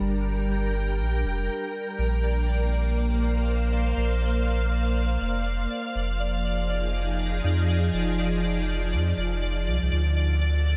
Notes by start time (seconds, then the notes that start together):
Already playing: G3 D4 A#4 G5
0.00 G1
0.99 A#1
1.24 F1
1.98 A#1 A#3 D5
2.64 F5
2.88 C5
3.97 A#1
5.21 F1
5.95 F1 F3
6.35 G#4
6.45 D#4
7.44 F2
7.93 F1
8.92 F2
9.17 F1
9.67 C2
9.82 C2
9.91 D2 D3
10.10 D4
10.51 A4